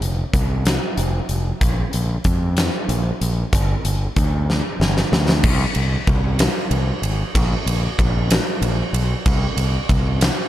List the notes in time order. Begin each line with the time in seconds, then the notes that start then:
0.01 F1, closed hi-hat
0.33 C2, kick, closed hi-hat
0.65 snare, closed hi-hat
0.97 F1, closed hi-hat
1.29 F1, closed hi-hat
1.61 A#1, kick, closed hi-hat
1.93 A#1, closed hi-hat
2.24 F2, kick, closed hi-hat
2.57 snare, closed hi-hat
2.89 A#1, closed hi-hat
3.21 A#1, closed hi-hat
3.53 G1, kick, closed hi-hat
3.85 G1, closed hi-hat
4.16 D2, kick, closed hi-hat
4.50 snare
4.80 G1, snare
4.97 snare
5.12 D2, snare
5.29 snare
5.43 C2, kick, crash
5.75 C2, ride
6.07 C2, kick, ride
6.39 snare, ride
6.71 C2, ride
7.02 G#1, ride
7.35 A#1, kick, ride
7.66 A#1, ride
7.98 A#1, kick, ride
8.31 snare, ride
8.62 A#1, ride
8.93 B1, ride
9.26 C2, kick, ride
9.57 C2, ride
9.89 C2, kick, ride
10.21 snare, ride